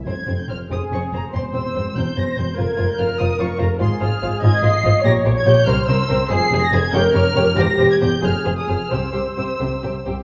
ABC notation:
X:1
M:6/8
L:1/16
Q:3/8=95
K:Fm
V:1 name="Violin section"
a'3 g' f'2 e'2 d'2 b2 | c'2 =e'4 g'2 b'2 g'2 | a'3 g' f'2 e'2 d'2 b2 | c'2 f'4 a'2 c''4 |
b'3 a' g'2 f'2 =e'4 | c''3 b' a'2 g'2 f'4 | b'3 a' g'2 f'3 e' f'2 | =e'8- e'2 z2 |]
V:2 name="Violin section"
[Cc]2 [Cc]2 [Cc]2 [Cc]2 [Cc]2 [Cc]2 | [Cc]2 [Cc]2 [Cc]2 [Cc]2 [Cc]2 [Cc]2 | [Fc]2 [Fc]2 [Fc]2 [Fc]2 [Fc]2 [Fc]2 | [Fc]2 [Fc]2 [Fc]2 [Fc]2 [Fc]2 [Fc]2 |
[Gd]2 [Gd]2 [Gd]2 [Bc]2 [Bc]2 [Bc]2 | [Ac]2 [Ac]2 [Ac]2 [Gd]2 [Gd]2 [Gd]2 | [Gc]2 [Gc]2 [Gc]2 [Ac]2 [Ac]2 [Ac]2 | [Gc]2 [Gc]2 [Gc]2 [Gc]2 [Gc]2 [Gc]2 |]
V:3 name="Viola section"
z6 A6 | c6 c6 | B12 | A6 e6 |
d6 c6 | A6 B6 | G6 A6 | c8- c z3 |]
V:4 name="Cello section" clef=bass
F,,2 F,,2 F,,2 F,,2 F,,2 F,,2 | =E,,2 E,,2 E,,2 E,,2 E,,2 E,,2 | F,,2 F,,2 F,,2 F,,2 F,,2 F,,2 | A,,2 A,,2 A,,2 A,,2 A,,2 A,,2 |
B,,2 B,,2 B,,2 C,2 C,2 C,2 | F,,2 F,,2 F,,2 F,,2 F,,2 F,,2 | =E,,2 E,,2 E,,2 F,,2 F,,2 F,,2 | C,2 C,2 C,2 C,2 C,2 C,2 |]
V:5 name="Double bass section" clef=bass
F,,,2 F,,,2 F,,,2 F,,,2 F,,,2 F,,,2 | =E,,,2 E,,,2 E,,,2 E,,,2 E,,,2 E,,,2 | F,,,2 F,,,2 F,,,2 F,,,2 F,,,2 F,,,2 | A,,,2 A,,,2 A,,,2 A,,,2 A,,,2 A,,,2 |
B,,,2 B,,,2 B,,,2 C,,2 C,,2 C,,2 | F,,,2 F,,,2 F,,,2 F,,,2 F,,,2 F,,,2 | =E,,,2 E,,,2 E,,,2 F,,,2 F,,,2 F,,,2 | C,,2 C,,2 C,,2 C,,2 C,,2 C,,2 |]